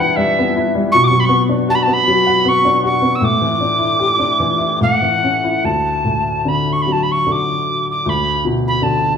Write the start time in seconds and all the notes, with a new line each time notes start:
Already playing: G2 E3 G3 B3 E4
0.00 B4 F#5
0.15 G3 E5
0.39 B3
0.56 E4
0.75 G3
0.91 B2 C#6
1.03 C#6 D6
1.10 F#3
1.19 B5
1.25 C#6
1.29 B3
1.49 D4
1.68 F#4 A5
1.75 B5
1.82 A5
1.87 B3
1.93 B5
2.08 F#3
2.27 F#5
2.45 B3 C#6
2.65 D4
2.84 F#4 C#6
3.02 B3
3.15 E6
3.21 A2 D6
3.42 E3
3.61 D4
3.79 E4
3.99 G4
4.19 D4
4.40 E3
4.58 E5
4.81 A2 F#5
5.02 E3
5.23 C#4
5.44 E4
5.64 D2 A5
6.05 A2
6.45 D3 B5
6.72 C#6
6.81 B5
6.86 F#3
6.92 A5
7.02 B5
7.11 C#6
7.26 D3
7.31 D6
7.91 D6
8.06 D2 B5
8.45 B2
8.67 B5
8.82 D3 A5